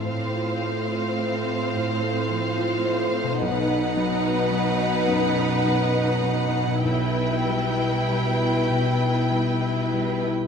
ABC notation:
X:1
M:4/4
L:1/16
Q:1/4=70
K:Ephr
V:1 name="Violin section"
f16 | ^f16 | g12- g3 z |]
V:2 name="Violin section"
c16 | B16 | B12- B3 z |]
V:3 name="Viola section"
C16 | ^D16 | E12- E3 z |]
V:4 name="Harp"
[A,,CFA]16 | [B,,B,^D^F]16 | [B,,B,EG]16 |]
V:5 name="Grand piano"
(3A,,2 F2 A,2 (3F2 A,2 F2 (3A,,2 A,2 F,2 (3F2 A,2 F2 | (3B,,,2 ^D2 ^F,2 (3D2 F,2 D2 (3^F,,2 D2 F,2 (3D2 F,2 D2 | (3B,,,2 E2 G,2 (3E2 G,2 E2 (3B,,2 E2 G,2 (3E2 G,2 E2 |]
V:6 name="Cello section" clef=bass
A,,16 | B,,16 | B,,12- B,,3 z |]